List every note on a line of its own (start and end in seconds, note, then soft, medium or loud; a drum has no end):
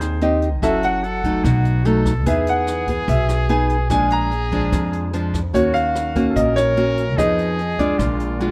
0.00 0.62 D#2 medium
0.00 0.60 D#3 medium
0.00 0.18 C4 medium
0.00 0.18 D#4 medium
0.00 0.31 G#4 medium
0.00 0.23 C5 medium
0.00 cross-stick medium
0.00 closed hi-hat soft
0.21 0.48 C4 medium
0.21 0.48 D#4 medium
0.21 0.48 G4 medium
0.21 0.64 D#5 medium
0.21 closed hi-hat soft
0.42 closed hi-hat soft
0.62 1.40 F#1 medium
0.62 1.23 F#3 soft
0.62 1.03 C#4 medium
0.62 1.03 E4 medium
0.62 1.05 F#4 loud
0.62 1.03 A4 medium
0.62 0.83 E5 medium
0.62 kick medium
0.62 cross-stick medium
0.62 closed hi-hat medium
0.83 1.61 F#5 loud
0.83 closed hi-hat soft
1.03 1.46 A4 loud
1.03 closed hi-hat soft
1.24 1.82 F#3 medium
1.24 1.82 A3 medium
1.24 1.83 D#4 medium
1.24 kick medium
1.24 closed hi-hat soft
1.44 2.26 B1 medium
1.44 2.24 B2 medium
1.44 1.88 F#4 medium
1.44 kick medium
1.44 cross-stick medium
1.44 closed hi-hat medium
1.65 closed hi-hat soft
1.85 2.11 F#3 medium
1.85 2.12 A3 medium
1.85 2.12 D#4 medium
1.85 2.28 A4 medium
1.85 closed hi-hat soft
2.06 kick medium
2.06 cross-stick medium
2.06 closed hi-hat soft
2.26 3.04 E2 medium
2.26 3.06 E3 medium
2.26 2.84 B3 medium
2.26 2.84 D#4 soft
2.26 3.90 G#4 medium
2.26 2.85 G#4 medium
2.26 2.48 E5 medium
2.26 kick medium
2.26 closed hi-hat medium
2.47 2.86 F#5 medium
2.47 closed hi-hat soft
2.67 cross-stick medium
2.67 closed hi-hat soft
2.88 3.46 B3 medium
2.88 3.46 G#4 medium
2.88 kick medium
2.88 closed hi-hat soft
3.08 3.90 B1 medium
3.08 3.88 B2 medium
3.08 3.51 E5 medium
3.08 kick medium
3.08 closed hi-hat medium
3.29 cross-stick medium
3.29 closed hi-hat soft
3.49 3.75 B3 medium
3.49 3.76 D#4 medium
3.49 3.76 G#4 medium
3.49 3.88 G#5 medium
3.49 closed hi-hat soft
3.70 closed hi-hat soft
3.90 4.68 A#1 medium
3.90 4.70 A#2 medium
3.90 4.31 F3 medium
3.90 4.31 G#3 medium
3.90 4.31 D4 medium
3.90 5.23 G#4 loud
3.90 4.12 G#5 loud
3.90 kick medium
3.90 cross-stick medium
3.90 closed hi-hat medium
4.10 4.89 A#5 loud
4.10 closed hi-hat soft
4.31 closed hi-hat soft
4.52 5.10 F3 medium
4.52 5.10 G#3 medium
4.52 5.10 D4 medium
4.52 kick medium
4.52 closed hi-hat soft
4.72 5.54 F2 medium
4.72 5.52 F2 soft
4.72 kick medium
4.72 cross-stick medium
4.72 closed hi-hat medium
4.93 closed hi-hat soft
5.13 5.40 F3 medium
5.13 5.40 G#3 medium
5.13 5.40 D4 medium
5.13 closed hi-hat soft
5.34 kick soft
5.34 cross-stick medium
5.34 closed hi-hat soft
5.54 6.32 D#2 medium
5.54 6.34 D#3 medium
5.54 6.12 A#3 medium
5.54 6.12 C#4 soft
5.54 6.25 F#4 medium
5.54 6.12 F#4 medium
5.54 5.75 C#5 medium
5.54 kick medium
5.54 closed hi-hat medium
5.74 6.37 F5 loud
5.74 closed hi-hat soft
5.95 cross-stick medium
5.95 closed hi-hat soft
6.16 6.74 A#3 medium
6.16 6.74 C#4 medium
6.16 6.74 F#4 medium
6.16 kick medium
6.16 closed hi-hat soft
6.29 6.37 A4 medium
6.36 7.18 A#1 medium
6.36 7.16 A#2 medium
6.36 7.19 A#4 loud
6.36 6.57 D#5 medium
6.36 kick medium
6.36 closed hi-hat medium
6.56 7.19 C#5 loud
6.56 cross-stick medium
6.56 closed hi-hat soft
6.77 7.03 A#3 medium
6.77 7.03 C#4 medium
6.77 7.03 F#4 medium
6.77 closed hi-hat soft
6.98 closed hi-hat soft
7.17 7.96 F2 medium
7.17 7.79 F3 medium
7.17 7.59 B3 medium
7.17 7.59 D#4 medium
7.17 8.00 G#4 loud
7.17 7.59 G#4 medium
7.17 7.81 D#5 medium
7.17 kick medium
7.17 cross-stick medium
7.17 closed hi-hat medium
7.39 closed hi-hat soft
7.59 closed hi-hat soft
7.79 8.37 G#3 medium
7.79 8.38 D4 medium
7.79 8.38 F4 medium
7.79 8.51 D5 medium
7.79 kick medium
7.79 closed hi-hat soft
7.99 8.51 A#1 medium
7.99 8.51 A#2 medium
7.99 8.41 F4 medium
7.99 kick medium
7.99 cross-stick medium
7.99 closed hi-hat medium
8.20 closed hi-hat soft
8.40 8.51 G#3 medium
8.40 8.51 D4 medium
8.40 8.51 F4 medium
8.40 8.51 F#4 medium
8.40 closed hi-hat soft